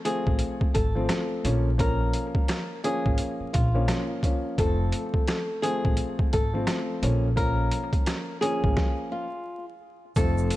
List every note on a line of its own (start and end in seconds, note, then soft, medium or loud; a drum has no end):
0.05 0.87 F3 medium
0.05 0.88 A3 medium
0.05 0.88 C4 medium
0.05 0.70 G#4 medium
0.05 closed hi-hat medium
0.27 0.39 A1 medium
0.27 kick medium
0.39 closed hi-hat medium
0.61 muted upright bass stroke soft
0.61 kick medium
0.74 1.07 G#1 medium
0.74 1.75 A4 medium
0.74 kick medium
0.74 closed hi-hat medium
0.95 1.43 F3 medium
0.95 1.44 A3 medium
0.95 1.45 C4 loud
1.09 cross-stick medium
1.09 snare loud
1.09 closed hi-hat medium
1.44 2.10 A#1 medium
1.44 1.68 F3 medium
1.44 1.68 A#3 medium
1.44 1.68 C#4 loud
1.44 closed hi-hat medium
1.78 2.77 F3 medium
1.78 2.77 A#3 medium
1.78 2.77 C#4 loud
1.78 2.80 A#4 loud
1.78 kick loud
1.78 closed hi-hat medium
2.13 closed hi-hat medium
2.35 kick loud
2.48 cross-stick medium
2.48 snare loud
2.48 closed hi-hat loud
2.84 3.66 F3 medium
2.84 3.67 A#3 medium
2.84 3.67 C#4 loud
2.84 3.50 G#4 medium
2.84 closed hi-hat medium
3.06 3.18 G#1 medium
3.06 kick medium
3.18 closed hi-hat medium
3.40 muted upright bass stroke soft
3.53 3.86 A#1 loud
3.53 4.06 F4 medium
3.53 kick medium
3.53 closed hi-hat medium
3.74 4.20 F3 medium
3.74 4.20 A#3 medium
3.74 4.20 C#4 medium
3.88 cross-stick medium
3.88 snare loud
3.88 closed hi-hat loud
4.23 4.56 F3 medium
4.23 4.57 A#3 medium
4.23 4.57 C#4 medium
4.23 kick medium
4.23 closed hi-hat medium
4.58 4.90 F1 loud
4.58 5.56 F3 medium
4.58 5.57 A3 medium
4.58 5.57 C4 medium
4.58 5.59 A4 loud
4.58 kick loud
4.58 closed hi-hat medium
4.92 closed hi-hat medium
5.14 kick medium
5.27 cross-stick medium
5.27 snare loud
5.27 closed hi-hat medium
5.62 6.45 F3 medium
5.62 6.46 A3 medium
5.62 6.46 C4 loud
5.62 6.28 G#4 medium
5.62 closed hi-hat medium
5.85 5.97 A1 medium
5.85 kick medium
5.97 closed hi-hat loud
6.19 muted upright bass stroke soft
6.19 kick medium
6.33 6.65 G#1 medium
6.33 7.33 A4 medium
6.33 kick medium
6.33 closed hi-hat medium
6.54 7.01 F3 medium
6.54 7.02 A3 medium
6.54 7.03 C4 loud
6.67 cross-stick medium
6.67 snare loud
6.67 closed hi-hat loud
7.02 7.68 A#1 loud
7.02 7.26 F3 medium
7.02 7.26 A#3 medium
7.02 7.26 C#4 loud
7.02 closed hi-hat medium
7.36 8.35 F3 medium
7.36 8.35 A#3 medium
7.36 8.35 C#4 loud
7.36 8.38 A#4 loud
7.36 kick loud
7.36 closed hi-hat medium
7.71 closed hi-hat medium
7.93 kick loud
7.93 closed hi-hat soft
8.06 cross-stick medium
8.06 snare medium
8.06 closed hi-hat loud
8.41 9.24 F3 medium
8.41 9.24 A#3 medium
8.41 9.25 C#4 loud
8.41 9.07 G#4 medium
8.41 closed hi-hat medium
8.64 8.76 G#1 medium
8.64 kick medium
8.77 kick loud
8.77 snare medium
9.12 9.64 F4 medium
10.16 10.48 F1 loud
10.16 10.56 F3 medium
10.16 10.56 A3 medium
10.16 10.56 C4 loud
10.16 10.56 A4 loud
10.16 kick loud
10.16 closed hi-hat medium
10.16 shaker medium
10.38 shaker medium
10.50 closed hi-hat medium
10.50 shaker medium